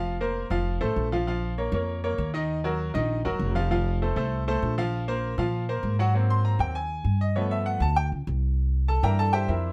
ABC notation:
X:1
M:4/4
L:1/8
Q:1/4=197
K:Fphr
V:1 name="Grand piano"
[F,Ff] [B,Bc]2 [F,Ff]2 [=A,=Ac]2 [F,Ff] | [F,Ff]2 [B,Bd] [B,Bd]2 [B,Bd]2 [E,Ee]- | [E,Ee] [G,GB]2 [E,Ee]2 [G,GB]2 [F,Ff] | [F,Ff]2 [=A,=Ac] [A,Ac]2 [A,Ac]2 [F,Ff]- |
[F,Ff] [B,Bc]2 [F,Ff]2 [B,Bc]2 [G,Gg] | z c' b =g a3 e | d =e g =a =g z3 | z2 [=A=a] [B=e=gb] [Aa] [=Gceg] [=EBce]2 |]
V:2 name="Grand piano"
z8 | z8 | z8 | z8 |
z8 | [G,B,C]3 [G,B,C] z4 | [F,=A,=B,]3 z4 z | z3 [=E,B,=D]4- [E,B,D] |]
V:3 name="Upright bass" clef=bass
F,,,3 F,,,2 =A,,, B,,,2- | B,,,3 F,,3 E,,2- | E,,3 B,,,2 G,,, F,,,2- | F,,,3 C,,3 B,,,2- |
B,,,3 B,,3 A,,2- | A,,3 E,,3 =G,,2- | =G,,3 =D,,2 _D,, C,,2- | C,,3 =G,,3 F,,2 |]